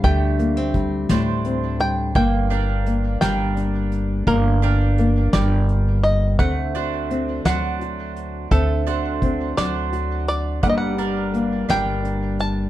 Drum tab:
HH |xxxxxx|xxxxxx|xxxxxx|xxxxxx|
SD |---o--|---o--|---o--|---o--|
BD |o-o---|o-----|o-----|o-----|

HH |xxxxxx|xxxxxx|
SD |---o--|---o--|
BD |o-o---|o-----|